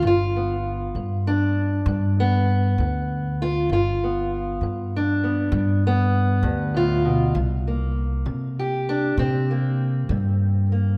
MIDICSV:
0, 0, Header, 1, 3, 480
1, 0, Start_track
1, 0, Tempo, 610376
1, 29, Time_signature, 12, 3, 24, 8
1, 8630, End_track
2, 0, Start_track
2, 0, Title_t, "Steel-string acoustic guitar"
2, 0, Program_c, 0, 25
2, 37, Note_on_c, 0, 43, 72
2, 55, Note_on_c, 0, 65, 82
2, 286, Note_on_c, 0, 59, 43
2, 465, Note_off_c, 0, 43, 0
2, 753, Note_on_c, 0, 43, 66
2, 1001, Note_on_c, 0, 62, 87
2, 1002, Note_off_c, 0, 65, 0
2, 1183, Note_off_c, 0, 43, 0
2, 1481, Note_on_c, 0, 43, 66
2, 1715, Note_off_c, 0, 62, 0
2, 1721, Note_off_c, 0, 59, 0
2, 1730, Note_on_c, 0, 59, 87
2, 1907, Note_off_c, 0, 43, 0
2, 2203, Note_on_c, 0, 43, 71
2, 2628, Note_off_c, 0, 43, 0
2, 2679, Note_off_c, 0, 59, 0
2, 2689, Note_on_c, 0, 65, 102
2, 2919, Note_off_c, 0, 65, 0
2, 2927, Note_on_c, 0, 43, 73
2, 2933, Note_on_c, 0, 65, 87
2, 3174, Note_on_c, 0, 59, 45
2, 3350, Note_off_c, 0, 43, 0
2, 3641, Note_on_c, 0, 43, 71
2, 3881, Note_off_c, 0, 65, 0
2, 3904, Note_on_c, 0, 62, 77
2, 4067, Note_off_c, 0, 43, 0
2, 4109, Note_off_c, 0, 59, 0
2, 4118, Note_on_c, 0, 59, 45
2, 4347, Note_on_c, 0, 43, 76
2, 4606, Note_off_c, 0, 59, 0
2, 4607, Note_off_c, 0, 62, 0
2, 4615, Note_on_c, 0, 59, 88
2, 4780, Note_off_c, 0, 43, 0
2, 5058, Note_on_c, 0, 43, 62
2, 5303, Note_on_c, 0, 45, 56
2, 5304, Note_off_c, 0, 43, 0
2, 5321, Note_on_c, 0, 65, 95
2, 5540, Note_off_c, 0, 45, 0
2, 5543, Note_on_c, 0, 47, 59
2, 5562, Note_off_c, 0, 59, 0
2, 5786, Note_off_c, 0, 47, 0
2, 5789, Note_on_c, 0, 48, 73
2, 5795, Note_off_c, 0, 65, 0
2, 6035, Note_on_c, 0, 58, 42
2, 6221, Note_off_c, 0, 48, 0
2, 6495, Note_on_c, 0, 48, 75
2, 6758, Note_on_c, 0, 67, 76
2, 6934, Note_off_c, 0, 48, 0
2, 6991, Note_on_c, 0, 62, 88
2, 7224, Note_off_c, 0, 62, 0
2, 7228, Note_on_c, 0, 60, 94
2, 7235, Note_on_c, 0, 48, 70
2, 7467, Note_off_c, 0, 58, 0
2, 7474, Note_off_c, 0, 67, 0
2, 7476, Note_on_c, 0, 58, 48
2, 7664, Note_off_c, 0, 48, 0
2, 7948, Note_on_c, 0, 48, 74
2, 8380, Note_off_c, 0, 48, 0
2, 8420, Note_off_c, 0, 58, 0
2, 8430, Note_on_c, 0, 58, 45
2, 8630, Note_off_c, 0, 58, 0
2, 8630, Note_off_c, 0, 60, 0
2, 8630, End_track
3, 0, Start_track
3, 0, Title_t, "Upright bass"
3, 0, Program_c, 1, 32
3, 19, Note_on_c, 1, 31, 85
3, 712, Note_off_c, 1, 31, 0
3, 746, Note_on_c, 1, 43, 73
3, 1435, Note_off_c, 1, 43, 0
3, 1461, Note_on_c, 1, 43, 104
3, 2153, Note_off_c, 1, 43, 0
3, 2187, Note_on_c, 1, 38, 91
3, 2876, Note_off_c, 1, 38, 0
3, 2904, Note_on_c, 1, 31, 82
3, 3595, Note_off_c, 1, 31, 0
3, 3624, Note_on_c, 1, 43, 72
3, 4315, Note_off_c, 1, 43, 0
3, 4339, Note_on_c, 1, 43, 104
3, 5033, Note_off_c, 1, 43, 0
3, 5054, Note_on_c, 1, 38, 92
3, 5750, Note_off_c, 1, 38, 0
3, 5778, Note_on_c, 1, 36, 88
3, 6472, Note_off_c, 1, 36, 0
3, 6492, Note_on_c, 1, 48, 80
3, 7189, Note_off_c, 1, 48, 0
3, 7215, Note_on_c, 1, 48, 100
3, 7911, Note_off_c, 1, 48, 0
3, 7936, Note_on_c, 1, 43, 92
3, 8630, Note_off_c, 1, 43, 0
3, 8630, End_track
0, 0, End_of_file